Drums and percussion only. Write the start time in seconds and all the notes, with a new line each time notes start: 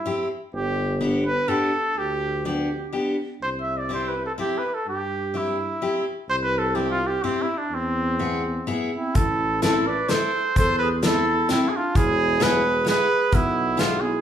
9.15 kick, closed hi-hat
9.62 snare, closed hi-hat
10.09 snare, closed hi-hat
10.56 kick, closed hi-hat
11.03 snare, closed hi-hat
11.49 snare, closed hi-hat
11.95 kick, closed hi-hat
12.41 snare, closed hi-hat
12.87 snare, closed hi-hat
13.32 kick, closed hi-hat
13.79 snare, closed hi-hat